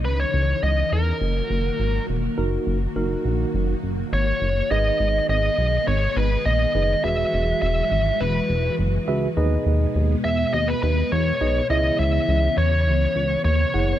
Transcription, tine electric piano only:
\new Staff \with { instrumentName = "Tine electric piano" } { \time 4/4 \key gis \minor \tempo 4 = 103 r1 | <dis' fis' ais'>8 r8 <dis' fis' ais'>4. r4. | <dis' gis' b' dis''>4. r2 <dis' gis' b' dis''>8 | <fis' gis' b' e''>4. r2 <fis' gis' b' e''>8 |
<dis' gis' b' dis''>4. r2 <dis' gis' b' dis''>8 | <e' gis' cis'' e''>4. r2 <e' gis' cis'' fis''>8 | }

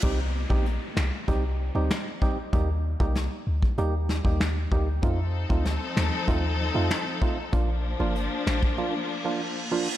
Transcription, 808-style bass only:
\new Staff \with { instrumentName = "808-style bass" } { \clef bass \time 4/4 \key c \dorian \tempo 4 = 96 c,8. bes,,8 r16 c,16 r16 c,8. d,16 r4 | ees,8. c,8 r16 d,16 r16 ees,8. ees,8. d,8 | f,8. d,8 r16 ees,16 r16 ees,8. f,16 r4 | bes,,8. g,,8 r16 a,,16 r2 r16 | }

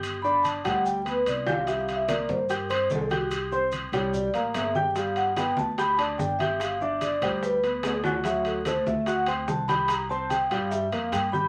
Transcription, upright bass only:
\new Staff \with { instrumentName = "Upright bass" } { \clef bass \time 4/4 \key c \major \tempo 4 = 146 g,,4. d,4. c,4~ | c,4. g,4. c,4~ | c,4. c,4 a,,8 g,,4~ | g,,4. d,4. g,,4~ |
g,,4. d,4. d,4~ | d,4. d,4. c,4~ | c,4. g,4 f,8 g,4 | }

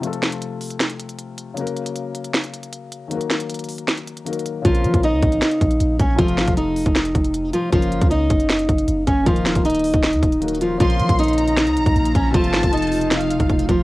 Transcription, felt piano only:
\new Staff \with { instrumentName = "Felt piano" } { \time 4/4 \key bes \minor \tempo 4 = 156 <c f a f' a'>1 | <des ges bes ges' bes'>1 | <ees ges bes ges' bes'>2. <ees ges bes ges' bes'>4 | <des bes c' f' bes'>1 |
<c f a f' a'>1 | <des bes des' bes'>1 | <ees bes ees' bes'>2. <ees ges bes ges' bes'>4 | <des bes c' f' bes'>1 |
<c f a f' a'>1 | }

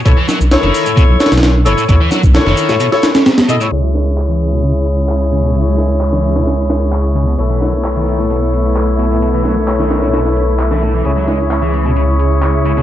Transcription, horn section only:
\new Staff \with { instrumentName = "Horn section" } { \time 4/4 \key cis \minor \tempo 4 = 131 <e' a' cis''>16 r8. <e' a' cis''>4. <e' a' cis''>16 r8. <e' a' cis''>8 | <e' a' cis''>16 r8. <e' a' cis''>4~ <e' a' cis''>16 <e' a' cis''>8 r8. <e' a' dis''>16 <e' a' cis''>16 | <e' gis' cis''>1~ | <e' gis' cis''>1 |
<e' a' cis''>1~ | <e' a' cis''>1 | <e' gis' cis''>1 | }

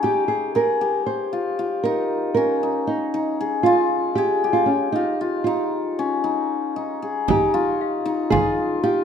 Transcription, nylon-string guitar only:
\new Staff \with { instrumentName = "Nylon-string guitar" } { \time 7/8 \key f \minor \tempo 4 = 116 g'8 aes'8 bes'4 c''4. | bes'4 bes'4 ees'4. | f'4 g'8. f'16 des'8 ees'4 | f'2~ f'8 r4 |
g'2 aes'4 g'8 | }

